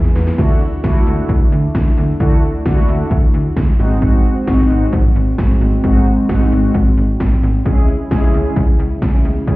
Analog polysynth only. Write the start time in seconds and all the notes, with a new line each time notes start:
0.38 A3 D4 E4 F#4
0.84 A3 D4 E4 F#4
2.20 A3 D4 E4 F#4
2.66 A3 D4 E4 F#4
3.79 G#3 C4 D#4 F#4
4.47 G#3 C4 D#4 F#4
5.84 G#3 C4 D#4 F#4
6.29 G#3 C4 D#4 F#4
7.66 G#3 C#4 E4 G#4
8.11 G#3 C#4 E4 G#4
9.47 G#3 C#4 E4 G#4